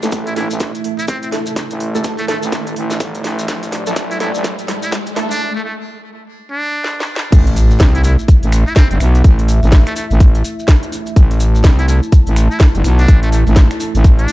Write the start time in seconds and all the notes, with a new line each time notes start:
Already playing: A3 E4 E5, riser
0.03 A1 A3 E4 A4, snare, maracas
0.11 A1 A3 E4 A4, kick, snare, closed hi-hat, maracas
0.27 E4, closed hi-hat, maracas
0.36 A1 A3 E4 A4, snare, closed hi-hat, open hi-hat
0.51 A1, maracas
0.60 kick, snare, closed hi-hat, maracas
0.75 closed hi-hat, maracas
0.84 closed hi-hat, open hi-hat
0.99 E4, maracas
1.08 C4, kick, snare, closed hi-hat, maracas
1.23 C4, closed hi-hat, maracas
1.32 A3 E4 A4, snare, closed hi-hat, open hi-hat
1.46 closed hi-hat, maracas
1.56 kick, snare, closed hi-hat, maracas
1.70 A1, closed hi-hat, maracas
1.80 closed hi-hat, open hi-hat
1.95 A3 E4 A4, maracas
2.04 A3 E4 A4, kick, snare, closed hi-hat, maracas
2.18 A3, snare, closed hi-hat, maracas
2.28 A3 E4 A4, snare, closed hi-hat, open hi-hat
2.43 A1, closed hi-hat, maracas
2.52 A3 E4 A4, kick, snare, closed hi-hat, maracas
2.67 closed hi-hat, maracas
2.76 A1, closed hi-hat, open hi-hat
2.90 snare, maracas
3.00 G1, kick, snare, closed hi-hat, maracas
3.15 closed hi-hat, maracas
3.24 A1, snare, closed hi-hat, open hi-hat
3.39 closed hi-hat, maracas
3.48 D5, kick, snare, closed hi-hat, maracas
3.63 snare, closed hi-hat, maracas
3.72 snare, closed hi-hat, open hi-hat
3.87 A1 A3 E4 A4, snare, maracas
3.96 A1 A3 E4 A4, kick, snare, closed hi-hat, maracas
4.11 E4, closed hi-hat, maracas
4.20 A1 A3 E4 A4, snare, closed hi-hat, open hi-hat
4.34 A1, maracas
4.44 kick, snare, closed hi-hat, maracas
4.59 closed hi-hat, maracas
4.68 snare, closed hi-hat, open hi-hat
4.83 E4, snare, maracas
4.92 kick, snare, closed hi-hat, maracas
5.06 closed hi-hat, maracas
5.16 A3 E4 A4, snare, closed hi-hat, open hi-hat
5.31 D4, closed hi-hat, maracas
5.55 A3
5.64 A3
6.51 D4
6.84 snare
7.00 snare
7.16 snare
7.32 A1 A3 E4 E5, kick, closed hi-hat, crash, impact, maracas
7.47 snare, closed hi-hat, maracas
7.56 closed hi-hat, open hi-hat, maracas
7.71 snare, maracas
7.79 C2, kick, snare, closed hi-hat, maracas
7.95 E4, closed hi-hat, maracas
8.04 E4, snare, closed hi-hat, open hi-hat, maracas
8.19 maracas
8.28 kick, closed hi-hat, maracas
8.43 A1, closed hi-hat, maracas
8.52 finger snap, closed hi-hat, open hi-hat, maracas
8.67 E4, maracas
8.76 C4, kick, snare, closed hi-hat, maracas
8.91 G1 C4, closed hi-hat, maracas
9.00 B1, finger snap, closed hi-hat, open hi-hat, maracas
9.15 closed hi-hat, maracas
9.24 kick, closed hi-hat, maracas
9.39 closed hi-hat, maracas
9.48 closed hi-hat, open hi-hat, maracas
9.63 A1, snare, maracas
9.72 kick, snare, closed hi-hat, maracas
9.86 A3, finger snap, snare, closed hi-hat, maracas
9.96 A3, closed hi-hat, open hi-hat, maracas
10.11 A1, closed hi-hat, maracas
10.20 kick, closed hi-hat, maracas
10.35 closed hi-hat, maracas
10.44 closed hi-hat, open hi-hat, maracas
10.59 maracas
10.68 kick, snare, closed hi-hat, maracas
10.83 closed hi-hat, maracas
10.92 closed hi-hat, open hi-hat, maracas
11.06 closed hi-hat, maracas
11.16 A1 A5, kick, closed hi-hat, maracas
11.31 snare, closed hi-hat, maracas
11.40 closed hi-hat, open hi-hat, maracas
11.55 snare, maracas
11.64 C2, kick, snare, closed hi-hat, maracas
11.79 E4, closed hi-hat, maracas
11.88 E4, snare, closed hi-hat, open hi-hat, maracas
12.03 maracas
12.12 kick, closed hi-hat, maracas
12.27 A1, closed hi-hat, maracas
12.36 finger snap, closed hi-hat, open hi-hat, maracas
12.51 E4, maracas
12.60 kick, snare, closed hi-hat, maracas
12.75 G1, closed hi-hat, maracas
12.84 B1, finger snap, closed hi-hat, open hi-hat, maracas
12.99 D4, closed hi-hat, maracas
13.08 A1, kick, closed hi-hat, maracas
13.23 A3, closed hi-hat, maracas
13.32 A3, closed hi-hat, open hi-hat, maracas
13.47 A1, snare, maracas
13.56 kick, snare, closed hi-hat, maracas
13.71 finger snap, snare, closed hi-hat, maracas
13.80 closed hi-hat, open hi-hat, maracas
13.95 A1, closed hi-hat, maracas
14.04 kick, closed hi-hat, maracas
14.19 D4, closed hi-hat, maracas
14.28 closed hi-hat, open hi-hat, maracas